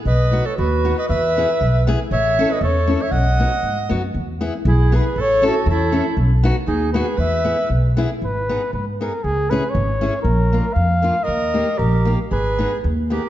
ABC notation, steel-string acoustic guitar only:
X:1
M:2/4
L:1/8
Q:"Swing" 1/4=117
K:E
V:1 name="Steel-string acoustic guitar"
z [B,DF] z [B,DF] | z [B,EG] z [B,EG] | z [CEA] z [CEA] | z [B,DF] z [B,DF] |
z [B,EG] z [B,EG] | z [CEA] z [CEA] | z [B,DF] z [B,DF] | z [B,EG] z [B,EG] |
[K:G#m] z [B,DG] z [B,DG] | z [CEG] z [CEG] | z [A,=D^E] z [A,DE] | z [A,D=G] z [A,DG] |
z [B,DG] z [B,DG] |]